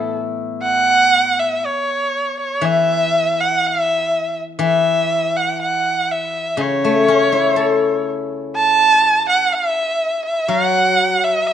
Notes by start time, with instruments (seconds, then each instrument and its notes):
Already playing: guzheng A2 E3 A3 B3 E4, erhu A4
0.63 erhu F#5
1.40 erhu E5
1.66 erhu C#5
2.40 erhu C#5
2.61 guzheng E3, erhu E5
3.40 erhu F#5
3.66 erhu E5
4.59 guzheng E3, erhu E5
5.36 erhu F#5
5.62 erhu F#5
6.11 erhu E5
6.57 guzheng C#3, erhu C#5
6.84 guzheng A3
7.08 guzheng C#4
7.32 guzheng E4
7.56 guzheng A4
8.56 erhu A5
9.29 erhu F#5
9.54 erhu E5
10.25 erhu E5
10.48 guzheng F#3, erhu F#5
11.24 erhu E5
11.47 erhu C#5